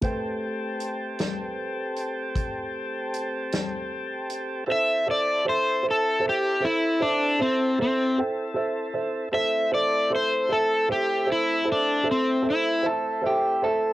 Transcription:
<<
  \new Staff \with { instrumentName = "Grand piano" } { \time 12/8 \key a \minor \tempo 4. = 52 <a b' c'' g''>1. | <a' c'' e''>8 <a' c'' e''>8 <a' c'' e''>8 <a' c'' e''>8 <a' c'' e''>8 <a' c'' e''>8 <a' c'' e''>8 <a' c'' e''>8 <a' c'' e''>8 <a' c'' g''>8 <a' c'' e''>8 <a' c'' e''>8 | <a' c'' e''>8 <a' c'' e''>8 <a' c'' e''>8 <a' c'' e''>8 <a' c'' e''>8 <a' c'' e''>8 <a' c'' e''>8 <a' c'' e''>8 <a' c'' e''>8 <a' c'' e''>8 <a' c'' e''>8 <a' c'' e''>8 | }
  \new Staff \with { instrumentName = "Clean electric guitar" } { \time 12/8 \key a \minor r1. | r1. | r1 r8 a'8 g'8 a'8 | }
  \new Staff \with { instrumentName = "Electric slide guitar" } { \time 12/8 \key a \minor r1. | e''8 d''8 c''8 a'8 g'8 e'8 d'8 c'8 c'8 r4. | e''8 d''8 c''8 a'8 g'8 e'8 d'8 c'8 e'8 r4. | }
  \new Staff \with { instrumentName = "Tonewheel organ" } { \time 12/8 \key a \minor <c' g' a'>1. | <c' e' a'>1. | <a c' e'>1. | }
  \new DrumStaff \with { instrumentName = "Drums" } \drummode { \time 12/8 <hh bd>4 hh8 <hh sn>4 hh8 <hh bd>4 hh8 <hh sn>4 hh8 | r4. r4. r4. r4. | r4. r4. r4. r4. | }
>>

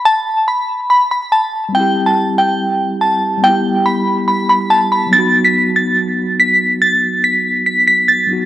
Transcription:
<<
  \new Staff \with { instrumentName = "Synth bell" } { \time 4/4 \key b \phrygian \tempo 4 = 142 a''4 b''4 b''8 b''8 a''8 r8 | g''8. a''16 r8 g''4. a''4 | g''4 b''4 b''8 b''8 a''8 b''8 | a'''8. b'''16 r8 a'''4. b'''4 |
a'''4 b'''4 b'''8 b'''8 a'''8 r8 | }
  \new Staff \with { instrumentName = "Tine electric piano" } { \time 4/4 \key b \phrygian r1 | <g c' e' g'>1 | <g b e' g'>1 | <fis b dis' fis'>1~ |
<fis b dis' fis'>2.~ <fis b dis' fis'>8 <fis b dis' fis'>8 | }
>>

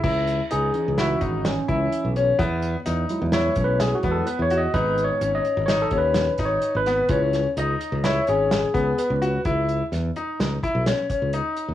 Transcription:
<<
  \new Staff \with { instrumentName = "Tine electric piano" } { \time 5/4 \key cis \minor \tempo 4 = 128 r4 gis'4 fis'4 cis'4. r8 | r2 \tuplet 3/2 { cis''4 b'8 gis'8 fis'8 a'8 b'8 cis''8 dis''8 } | \tuplet 3/2 { b'4 cis''8~ cis''8 dis''4 cis''8 a'8 b'8~ b'4 cis''8~ cis''8 b'4~ } | b'8 r8 dis''4 cis''8 gis'4. b'4 |
r1 r4 | }
  \new Staff \with { instrumentName = "Tine electric piano" } { \time 5/4 \key cis \minor r4. <e cis' dis'>2.~ <e cis' dis'>8 | r4. <fis gis e'>2 <fis gis e'>8 r4 | <gis b dis'>4. r2. r8 | <gis cis' e'>8 r1 r8 |
r1 r4 | }
  \new Staff \with { instrumentName = "Grand piano" } { \time 5/4 \key cis \minor e'4 dis'4 e'8 dis'4 e'4 cis'8 | b4 dis'4 e'8 cis'4 b4 fis'8 | dis'4 cis'4 dis'8 cis'4 dis'4 b8 | cis'4 dis'4 e'8 cis'4 b4 fis'8 |
e'4 r8 dis'4 e'8 cis'8 cis'8 dis'4 | }
  \new Staff \with { instrumentName = "Fingered electric bass" } { \clef bass \time 5/4 \key cis \minor cis,4 cis,8 r16 cis,8. gis,,4 cis,8 r16 b,,8. | e,4 e,8 r16 e,8. b,,4 e,8 r16 e,8. | gis,,4 gis,,8 r16 gis,,8. dis,4 gis,,8 r16 gis,,8. | cis,4 cis,8 r16 cis,8. gis,,4 cis,8 r16 cis,8. |
cis,4 e,8 r8 cis,8 r16 b,,8 r8 cis,8 r8 dis,16 | }
  \new DrumStaff \with { instrumentName = "Drums" } \drummode { \time 5/4 <cymc bd>8 hh8 hh8 hh8 <hh sn>8 <hh bd>8 <hh sn>8 <hh bd>8 hh8 hh8 | <hh bd>8 hh8 <hh sn>8 hh8 <hh sn>8 <hh bd>8 <hh sn>8 <hh bd>8 hh8 hh8 | <hh bd>8 hh8 hh8 hh8 <hh sn>8 <hh bd>8 <hh sn>8 <hh bd sn>8 hh8 <hh sn>8 | <hh bd>8 <hh sn>8 hh8 hh8 <hh sn>8 hh8 <hh sn>8 <hh bd>8 hh8 hh8 |
<hh bd>8 hh8 <hh sn>8 hh8 <hh sn>8 <hh bd>8 <hh sn>8 <hh bd>8 hh8 hh8 | }
>>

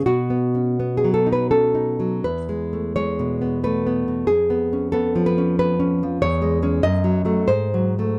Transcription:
\new Staff \with { instrumentName = "Nylon-string guitar" } { \time 3/4 \key cis \minor \tempo 4 = 89 << { fis'4~ fis'16 gis'16 a'16 b'16 a'4 | b'4 cis''4 b'4 | gis'4 a'8 b'8 b'4 | cis''4 dis''4 bis'4 | } \\ { \tuplet 3/2 { b,8 b8 cis'8 b8 fis8 dis'8 cis'8 dis'8 fis8 } | \tuplet 3/2 { e,8 gis8 a8 gis8 b,8 b8 a8 b8 b,8 } | \tuplet 3/2 { eis,8 b8 cis'8 b8 eis8 cis'8 b8 cis'8 eis8 } | \tuplet 3/2 { e,8 gis8 <gis cis'>8 fis,8 fis8 <fis a>8 gis,8 fis8 <fis a>8 } | } >> }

